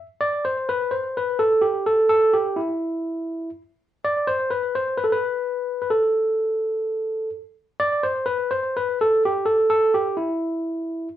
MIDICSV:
0, 0, Header, 1, 2, 480
1, 0, Start_track
1, 0, Key_signature, 0, "minor"
1, 0, Tempo, 473186
1, 239, Time_signature, 4, 2, 24, 8
1, 11329, End_track
2, 0, Start_track
2, 0, Title_t, "Tine electric piano"
2, 0, Program_c, 0, 4
2, 209, Note_on_c, 0, 74, 86
2, 447, Note_off_c, 0, 74, 0
2, 454, Note_on_c, 0, 72, 86
2, 699, Note_on_c, 0, 71, 85
2, 715, Note_off_c, 0, 72, 0
2, 925, Note_on_c, 0, 72, 73
2, 958, Note_off_c, 0, 71, 0
2, 1187, Note_on_c, 0, 71, 74
2, 1192, Note_off_c, 0, 72, 0
2, 1411, Note_on_c, 0, 69, 84
2, 1443, Note_off_c, 0, 71, 0
2, 1638, Note_on_c, 0, 67, 77
2, 1675, Note_off_c, 0, 69, 0
2, 1883, Note_off_c, 0, 67, 0
2, 1891, Note_on_c, 0, 69, 85
2, 2111, Note_off_c, 0, 69, 0
2, 2123, Note_on_c, 0, 69, 80
2, 2369, Note_on_c, 0, 67, 82
2, 2392, Note_off_c, 0, 69, 0
2, 2600, Note_on_c, 0, 64, 64
2, 2634, Note_off_c, 0, 67, 0
2, 3543, Note_off_c, 0, 64, 0
2, 4104, Note_on_c, 0, 74, 87
2, 4335, Note_on_c, 0, 72, 99
2, 4342, Note_off_c, 0, 74, 0
2, 4570, Note_on_c, 0, 71, 80
2, 4578, Note_off_c, 0, 72, 0
2, 4815, Note_off_c, 0, 71, 0
2, 4821, Note_on_c, 0, 72, 86
2, 5047, Note_on_c, 0, 71, 75
2, 5061, Note_off_c, 0, 72, 0
2, 5111, Note_on_c, 0, 69, 63
2, 5124, Note_off_c, 0, 71, 0
2, 5191, Note_off_c, 0, 69, 0
2, 5196, Note_on_c, 0, 71, 84
2, 5888, Note_off_c, 0, 71, 0
2, 5901, Note_on_c, 0, 71, 47
2, 5989, Note_on_c, 0, 69, 69
2, 5991, Note_off_c, 0, 71, 0
2, 7398, Note_off_c, 0, 69, 0
2, 7909, Note_on_c, 0, 74, 94
2, 8149, Note_on_c, 0, 72, 92
2, 8166, Note_off_c, 0, 74, 0
2, 8377, Note_on_c, 0, 71, 85
2, 8381, Note_off_c, 0, 72, 0
2, 8631, Note_on_c, 0, 72, 87
2, 8640, Note_off_c, 0, 71, 0
2, 8886, Note_off_c, 0, 72, 0
2, 8892, Note_on_c, 0, 71, 81
2, 9113, Note_off_c, 0, 71, 0
2, 9140, Note_on_c, 0, 69, 86
2, 9357, Note_off_c, 0, 69, 0
2, 9387, Note_on_c, 0, 67, 87
2, 9592, Note_on_c, 0, 69, 83
2, 9600, Note_off_c, 0, 67, 0
2, 9827, Note_off_c, 0, 69, 0
2, 9839, Note_on_c, 0, 69, 87
2, 10084, Note_on_c, 0, 67, 87
2, 10089, Note_off_c, 0, 69, 0
2, 10308, Note_off_c, 0, 67, 0
2, 10316, Note_on_c, 0, 64, 61
2, 11237, Note_off_c, 0, 64, 0
2, 11329, End_track
0, 0, End_of_file